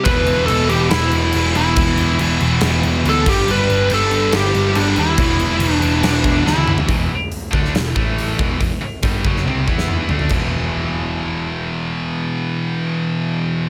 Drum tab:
CC |x-x-x-x-x-x-x-x-|x-x-x-x-x-x-x-x-|x-x-x-x-x-x-x-x-|x-x-x-x-x-x-----|
HH |----------------|----------------|----------------|----------------|
SD |--------o-------|--------o-------|--------o-------|--------o---o---|
T1 |----------------|----------------|----------------|-------------o--|
T2 |----------------|----------------|----------------|--------------o-|
FT |----------------|----------------|----------------|---------------o|
BD |o---------------|o-------------o-|----------------|o---------o-----|

CC |----------------|----------------|x---------------|----------------|
HH |o---o---o---o---|o---o-----------|----------------|----------------|
SD |-------oo-------|-------o---o----|----------------|----------------|
T1 |----------------|--------o-------|----------------|----------------|
T2 |----------------|------------o---|----------------|----------------|
FT |----------------|--------------oo|----------------|----------------|
BD |o-----o---o---o-|o---o-o---o-----|o---------------|----------------|